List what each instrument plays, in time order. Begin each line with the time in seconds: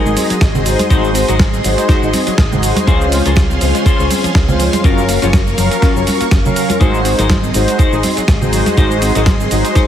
Already playing: clean electric guitar D#4 F#4 G#4 A#4, string machine G#4 D#5 C6
0.05 fingered electric bass G#1, analog polysynth G#3 D#4 F#4 D#5, synth arpeggio sound G#3, shaker
0.17 synth arpeggio sound C4, open hi-hat, high conga, shaker
0.30 synth arpeggio sound F#3, muted fingered electric bass stroke, closed hi-hat, shaker
0.41 fingered electric bass G#1, synth arpeggio sound G#3, kick, snare, closed hi-hat, shaker
0.54 analog polysynth G#3 D#4 F#4 C5, synth arpeggio sound C4, low conga, shaker
0.66 synth arpeggio sound F#3, open hi-hat, shaker
0.79 synth arpeggio sound G#3, muted clean electric guitar stroke, closed hi-hat, high conga, shaker
0.90 fingered electric bass G#1, synth arpeggio sound F#3, analog polysynth G#3 D#4 F#4 C5, clean electric guitar D#4 F#4 G#4 C5, kick, closed hi-hat, shaker
1.04 synth arpeggio sound G#3, shaker
1.15 synth arpeggio sound C4, open hi-hat, shaker
1.28 fingered electric bass G#1, synth arpeggio sound F#3, analog polysynth G#3 D#4 F#4 A#4, clean electric guitar D#4 F#4 G#4 C5, closed hi-hat, shaker
1.39 synth arpeggio sound G#3, kick, snare, closed hi-hat, high conga, shaker
1.53 synth arpeggio sound C4, shaker
1.64 fingered electric bass G#1, synth arpeggio sound F#3, analog polysynth G#3 D#4 F#4 C5, muted clean electric guitar stroke, open hi-hat, shaker
1.78 synth arpeggio sound G#3, closed hi-hat, shaker
1.88 synth arpeggio sound F#3, clean electric guitar D#4 F#4 G#4 C5, kick, snare, closed hi-hat, shaker
2.02 fingered electric bass G#1, analog polysynth G#3 D#4 F#4 D#5, synth arpeggio sound G#3, shaker
2.13 synth arpeggio sound C4, open hi-hat, high conga, shaker
2.27 synth arpeggio sound F#3, muted fingered electric bass stroke, closed hi-hat, shaker
2.38 fingered electric bass G#1, synth arpeggio sound G#3, kick, snare, closed hi-hat, shaker
2.51 analog polysynth G#3 D#4 F#4 C5, synth arpeggio sound C4, low conga, shaker
2.63 synth arpeggio sound F#3, open hi-hat, shaker
2.76 synth arpeggio sound G#3, muted clean electric guitar stroke, closed hi-hat, high conga, shaker
2.87 fingered electric bass C#2, synth arpeggio sound F3, analog polysynth G#3 C#4 F4 C5, clean electric guitar C#4 F4 G#4 C5, string machine C#4 G#4 F5 C6, kick, closed hi-hat, shaker
3.01 synth arpeggio sound G#3, shaker
3.12 synth arpeggio sound C4, open hi-hat, shaker
3.25 fingered electric bass C#2, synth arpeggio sound F3, analog polysynth G#3 C#4 F4 A#4, clean electric guitar C#4 F4 G#4 C5, closed hi-hat, shaker
3.36 synth arpeggio sound G#3, kick, snare, closed hi-hat, high conga, shaker
3.50 synth arpeggio sound C4, shaker
3.61 fingered electric bass C#2, synth arpeggio sound F3, analog polysynth G#3 C#4 F4 C5, muted clean electric guitar stroke, open hi-hat, shaker
3.74 synth arpeggio sound G#3, closed hi-hat, shaker
3.85 synth arpeggio sound F3, clean electric guitar C#4 F4 G#4 C5, muted fingered electric bass stroke, kick, closed hi-hat, shaker
3.99 fingered electric bass C#2, analog polysynth G#3 C#4 F4 C#5, synth arpeggio sound G#3, shaker
4.10 synth arpeggio sound C4, open hi-hat, high conga, shaker
4.24 synth arpeggio sound F3, muted fingered electric bass stroke, closed hi-hat, shaker
4.35 fingered electric bass C#2, synth arpeggio sound G#3, kick, snare, closed hi-hat, shaker
4.48 analog polysynth G#3 C#4 F4 C5, synth arpeggio sound C4, low conga, shaker
4.59 synth arpeggio sound F3, open hi-hat, shaker
4.73 synth arpeggio sound G#3, muted clean electric guitar stroke, closed hi-hat, high conga, shaker
4.84 fingered electric bass F#1, synth arpeggio sound F3, analog polysynth F#3 C#4 A#4 F5, clean electric guitar C#4 F4 F#4 A#4, string machine A#4 C#6, kick, closed hi-hat, shaker
4.98 synth arpeggio sound F#3, shaker
5.09 synth arpeggio sound A#3, open hi-hat, shaker
5.22 fingered electric bass F#1, synth arpeggio sound F3, analog polysynth F#3 C#4 F4 G#4, clean electric guitar C#4 F4 F#4 C#5, closed hi-hat, shaker
5.33 synth arpeggio sound F#3, kick, snare, closed hi-hat, high conga, shaker
5.47 synth arpeggio sound A#3, shaker
5.57 fingered electric bass F#1, synth arpeggio sound F3, analog polysynth F#3 C#4 A#4 F5, muted clean electric guitar stroke, open hi-hat, shaker
5.71 synth arpeggio sound F#3, closed hi-hat, shaker
5.82 synth arpeggio sound F3, clean electric guitar C#4 F4 F#4 A#4, kick, snare, closed hi-hat, shaker
5.95 fingered electric bass F#1, analog polysynth F#3 C#4 F4 C#5, synth arpeggio sound F#3, shaker
6.07 synth arpeggio sound F#3, open hi-hat, high conga, shaker
6.21 synth arpeggio sound A#3, muted fingered electric bass stroke, closed hi-hat, shaker
6.31 fingered electric bass F#1, synth arpeggio sound C#4, kick, snare, closed hi-hat, shaker
6.44 analog polysynth F#3 C#4 A#4 F5, synth arpeggio sound C#4, low conga, shaker
6.56 synth arpeggio sound A#4, open hi-hat, shaker
6.69 synth arpeggio sound F4, muted clean electric guitar stroke, closed hi-hat, high conga, shaker
6.80 fingered electric bass G#1, synth arpeggio sound F#3, analog polysynth G#3 D#4 F#4 C5, clean electric guitar D#4 F#4 G#4 C5, string machine G#4 D#5 C6, kick, closed hi-hat, shaker
6.94 synth arpeggio sound G#3, shaker
7.05 synth arpeggio sound C4, open hi-hat, shaker
7.18 fingered electric bass G#1, synth arpeggio sound F#3, analog polysynth G#3 D#4 F#4 A#4, clean electric guitar D#4 F#4 G#4 C5, closed hi-hat, shaker
7.30 synth arpeggio sound G#3, kick, snare, closed hi-hat, high conga, shaker
7.43 synth arpeggio sound C4, shaker
7.54 fingered electric bass G#1, synth arpeggio sound F#3, analog polysynth G#3 D#4 F#4 C5, muted clean electric guitar stroke, open hi-hat, shaker
7.68 synth arpeggio sound G#3, closed hi-hat, shaker
7.78 synth arpeggio sound F#3, clean electric guitar D#4 F#4 G#4 C5, muted fingered electric bass stroke, kick, closed hi-hat, shaker
7.92 fingered electric bass G#1, analog polysynth G#3 D#4 F#4 D#5, synth arpeggio sound G#3, shaker
8.03 synth arpeggio sound C4, open hi-hat, high conga, shaker
8.17 synth arpeggio sound F#3, muted fingered electric bass stroke, closed hi-hat, shaker
8.28 fingered electric bass G#1, synth arpeggio sound G#3, kick, snare, closed hi-hat, shaker
8.41 analog polysynth G#3 D#4 F#4 C5, synth arpeggio sound C4, low conga, shaker
8.53 synth arpeggio sound F#3, open hi-hat, shaker
8.66 synth arpeggio sound G#3, muted clean electric guitar stroke, closed hi-hat, high conga, shaker
8.77 fingered electric bass G#1, synth arpeggio sound F#3, analog polysynth G#3 D#4 F#4 C5, clean electric guitar D#4 F#4 G#4 C5, kick, closed hi-hat, shaker
8.91 synth arpeggio sound G#3, shaker
9.02 synth arpeggio sound C4, open hi-hat, shaker
9.15 fingered electric bass G#1, synth arpeggio sound F#3, analog polysynth G#3 D#4 F#4 A#4, clean electric guitar D#4 F#4 G#4 C5, closed hi-hat, shaker
9.26 synth arpeggio sound G#3, kick, snare, closed hi-hat, high conga, shaker
9.40 synth arpeggio sound C4, shaker
9.51 fingered electric bass G#1, synth arpeggio sound F#3, analog polysynth G#3 D#4 F#4 C5, muted clean electric guitar stroke, open hi-hat, shaker
9.64 synth arpeggio sound G#3, closed hi-hat, shaker
9.75 synth arpeggio sound F#3, clean electric guitar D#4 F#4 G#4 C5, kick, snare, closed hi-hat, shaker